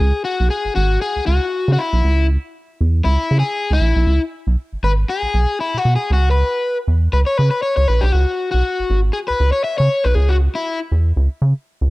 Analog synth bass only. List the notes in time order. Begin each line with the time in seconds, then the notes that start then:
0.01 C#2
0.40 B1
0.65 G#1
0.77 G#1
1.16 C#2
1.28 C#2
1.68 C#3
1.93 B1
2.04 C#2
2.81 E2
3.06 C#2
3.31 C#3
3.71 C#2
3.81 A#1
3.96 B1
4.07 C#2
4.47 B1
4.73 G#1
4.83 G#1
5.22 B1
5.34 B1
5.74 B2
5.85 B2
6.10 C#2
6.88 E2
7.13 C#2
7.39 C#3
7.77 C#2
7.89 A#1
8.03 B1
8.14 C#2
8.54 B1
8.79 G#1
8.90 G#1
9.30 C#2
9.40 C#2
9.80 C#3
10.05 B1
10.15 C#2
10.92 E2
11.17 C#2
11.42 C#3
11.81 C#2